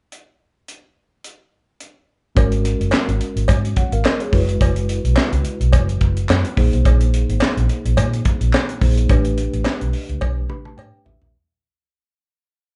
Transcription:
0.12 closed hi-hat
0.68 closed hi-hat
1.24 closed hi-hat
1.80 closed hi-hat
2.35 fingered electric bass G#1, tine electric piano G#3 C#4 F#4 A#4, kick, closed hi-hat, cowbell
2.52 closed hi-hat
2.65 closed hi-hat
2.80 fingered electric bass F#1, closed hi-hat
2.91 snare, clap, cowbell
3.08 fingered electric bass G#1, closed hi-hat
3.21 closed hi-hat
3.36 fingered electric bass G#1, closed hi-hat
3.48 fingered electric bass G#2, kick, closed hi-hat, cowbell
3.65 closed hi-hat
3.76 tine electric piano C#5 F#5, kick, closed hi-hat
3.92 fingered electric bass G#1, tine electric piano A#4 F5, closed hi-hat
4.05 tine electric piano A#4 D#5, snare, clap, cowbell
4.20 tine electric piano G#4 C#5, closed hi-hat
4.32 fingered electric bass F#1, tine electric piano G#3 E4 F#4 B4, kick, open hi-hat
4.49 closed hi-hat
4.61 fingered electric bass F#1, kick, closed hi-hat, cowbell
4.76 closed hi-hat
4.89 closed hi-hat
5.04 fingered electric bass B1, closed hi-hat
5.16 snare, clap, cowbell
5.32 fingered electric bass C#2, closed hi-hat
5.45 closed hi-hat
5.60 fingered electric bass B1, closed hi-hat
5.73 fingered electric bass F#1, kick, closed hi-hat, cowbell
5.89 closed hi-hat
6.01 fingered electric bass F#1, kick, closed hi-hat
6.17 closed hi-hat
6.29 fingered electric bass F#2, snare, clap, cowbell
6.45 closed hi-hat
6.57 fingered electric bass A#1, tine electric piano A#3 D#4 G#4 C5, kick, open hi-hat
6.73 fingered electric bass B1, closed hi-hat
6.85 fingered electric bass A#1, kick, closed hi-hat, cowbell
7.01 closed hi-hat
7.14 closed hi-hat
7.29 fingered electric bass G#1, closed hi-hat
7.40 snare, clap, cowbell
7.57 fingered electric bass A#1, closed hi-hat
7.69 closed hi-hat
7.85 fingered electric bass A#1, closed hi-hat
7.97 fingered electric bass A#2, kick, closed hi-hat, cowbell
8.14 closed hi-hat
8.25 kick, closed hi-hat
8.41 fingered electric bass A#1, closed hi-hat
8.54 snare, clap, cowbell
8.69 closed hi-hat
8.81 fingered electric bass A#1, tine electric piano A#3 D#4 G#4 C5, kick, open hi-hat
8.98 closed hi-hat
9.09 fingered electric bass A1, tine electric piano A3 D4 G4 B4, kick, closed hi-hat, cowbell
9.25 closed hi-hat
9.38 closed hi-hat
9.53 fingered electric bass A1, closed hi-hat
9.65 snare, clap, cowbell
9.81 fingered electric bass B1, closed hi-hat
9.93 open hi-hat
10.09 fingered electric bass C#2, closed hi-hat
10.21 fingered electric bass B1, kick, high tom, cowbell
10.49 fingered electric bass A1, tine electric piano A3 D4 G4 B4 B5, mid tom
10.65 tine electric piano A5, mid tom
10.77 fingered electric bass A2, tine electric piano G5, mid tom, cowbell
11.05 fingered electric bass A1, tine electric piano E5, floor tom
11.21 fingered electric bass A#1, floor tom

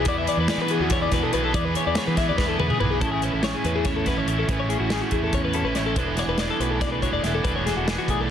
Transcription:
Already playing: clean electric guitar B3
0.05 fingered electric bass E2, overdriven electric guitar E3 B3 D4 G#4 B4, clean electric guitar E3 F#4 D5, kick, closed hi-hat
0.18 clean electric guitar G#4 E5
0.27 clean electric guitar D5, closed hi-hat
0.37 fingered electric bass E2, clean electric guitar B4
0.48 clean electric guitar B3 G#4 D5, snare, closed hi-hat
0.57 fingered electric bass E3, clean electric guitar B4
0.68 overdriven electric guitar D4 G#4 B4, clean electric guitar F#4 G#4, closed hi-hat
0.72 overdriven electric guitar E3 B3
0.80 fingered electric bass E2, clean electric guitar F#4 G#4
0.90 clean electric guitar F#4 C#5, kick, snare, closed hi-hat
1.02 clean electric guitar G#4 D5
1.12 fingered electric bass E2, clean electric guitar B2 F#4 B4, kick, snare, closed hi-hat
1.23 clean electric guitar G#4 A4
1.33 fingered electric bass B1, overdriven electric guitar E3 B3 D4 G#4 B4, clean electric guitar F#4 B4, closed hi-hat
1.44 clean electric guitar G#4 A4
1.53 fingered electric bass E2, clean electric guitar E3 G#4 D5, overdriven electric guitar E3 B3 D4 G#4 B4, kick, closed hi-hat
1.65 clean electric guitar B4
1.75 clean electric guitar C#5, closed hi-hat
1.86 fingered electric bass E2, clean electric guitar D5
1.95 clean electric guitar B3 G#4 C#5, snare, closed hi-hat
2.07 fingered electric bass E3, clean electric guitar B4
2.17 overdriven electric guitar E3 B3 D4 G#4 B4, clean electric guitar G#4 E5, kick, snare, closed hi-hat
2.29 fingered electric bass E2, clean electric guitar D5
2.38 clean electric guitar G#4 B4, kick, snare
2.48 clean electric guitar A4
2.58 fingered electric bass E2, clean electric guitar B2 G#4 B4, high tom
2.70 clean electric guitar G#4, mid tom
2.80 fingered electric bass B1, overdriven electric guitar E3 B3 D4 G#4 B4, clean electric guitar G#4 B4, mid tom
2.91 clean electric guitar G#4
3.00 fingered electric bass A1, clean electric guitar A2 C#4 E4 G#4 A4, overdriven electric guitar A2 E3 A3 C#4 E4, kick, closed hi-hat
3.12 clean electric guitar G#4
3.21 overdriven electric guitar A3 C#4 E4, clean electric guitar E4 B4, closed hi-hat
3.33 fingered electric bass A1, clean electric guitar A4
3.42 overdriven electric guitar A2 E3 A3 C#4 E4, clean electric guitar G#4 C#5, snare, closed hi-hat
3.55 clean electric guitar G#4
3.64 fingered electric bass E2, clean electric guitar E3 C#4 B4, closed hi-hat
3.75 clean electric guitar E4 G#4
3.85 clean electric guitar C#4 C#5, kick, snare, closed hi-hat
3.96 clean electric guitar A4
4.05 overdriven electric guitar A3 C#4 E4, clean electric guitar F#4 B4, kick, snare, closed hi-hat
4.16 fingered electric bass A1, clean electric guitar A4 C#5
4.26 fingered electric bass A1, clean electric guitar A2 E4 E5, overdriven electric guitar E3 A3 C#4 E4, closed hi-hat
4.39 clean electric guitar A4
4.47 overdriven electric guitar A2 E3 A3 C#4 E4, clean electric guitar A2 C#4 E4 G#4 B4, kick, closed hi-hat
4.60 clean electric guitar C#5
4.68 overdriven electric guitar A3 C#4 E4, clean electric guitar E4 G#4, closed hi-hat
4.80 fingered electric bass A1, clean electric guitar F#4
4.90 overdriven electric guitar A2 E3 A3 C#4 E4, clean electric guitar G#4, snare, closed hi-hat
5.02 clean electric guitar F#4
5.11 fingered electric bass E2, clean electric guitar E3 E4 G#4, kick, closed hi-hat
5.24 clean electric guitar A4
5.33 clean electric guitar C#4 C#5, kick, closed hi-hat
5.45 clean electric guitar B4
5.53 overdriven electric guitar A3 C#4 E4, clean electric guitar F#4 A4, closed hi-hat
5.64 fingered electric bass A1, clean electric guitar A4 B4
5.74 fingered electric bass A1, clean electric guitar A2 E4 C#5, overdriven electric guitar E3 A3, snare, closed hi-hat
5.78 overdriven electric guitar C#4 E4
5.86 clean electric guitar A4
5.96 fingered electric bass E1, overdriven electric guitar E3 B3 D4 G#4, clean electric guitar E3 D4 A4 B4, kick, closed hi-hat
6.07 clean electric guitar A4
6.17 overdriven electric guitar D4 G#4, clean electric guitar F#4 C#5, snare, closed hi-hat
6.21 overdriven electric guitar B3
6.27 fingered electric bass E1, clean electric guitar A4 B4
6.38 overdriven electric guitar E3 B3 D4, clean electric guitar B4 D5, snare, closed hi-hat
6.42 overdriven electric guitar G#4
6.50 clean electric guitar A4
6.60 fingered electric bass B1, clean electric guitar A3 F#4 B4, closed hi-hat
6.71 clean electric guitar A4
6.81 clean electric guitar D4 D5, kick, snare, closed hi-hat
6.92 clean electric guitar B4
7.02 overdriven electric guitar B3 D4 G#4, clean electric guitar F#4 C#5, kick, closed hi-hat
7.12 fingered electric bass E1, clean electric guitar A4 D5
7.23 fingered electric bass E1, clean electric guitar B2 A4 E5, overdriven electric guitar E3 B3 D4 G#4, snare, closed hi-hat
7.34 clean electric guitar A4
7.44 fingered electric bass E1, overdriven electric guitar E3 B3 D4 G#4, clean electric guitar E3 B4, kick, closed hi-hat
7.48 clean electric guitar D4 A4
7.56 clean electric guitar C#5
7.66 overdriven electric guitar B3 D4 G#4, clean electric guitar G#4 A4, snare, closed hi-hat
7.76 fingered electric bass E1, clean electric guitar F#4
7.86 overdriven electric guitar E3 B3 D4 G#4, clean electric guitar G#4, snare, closed hi-hat
7.91 clean electric guitar B4
7.98 clean electric guitar F#4
8.07 fingered electric bass B1, clean electric guitar A3 G#4, kick, closed hi-hat
8.21 clean electric guitar A4

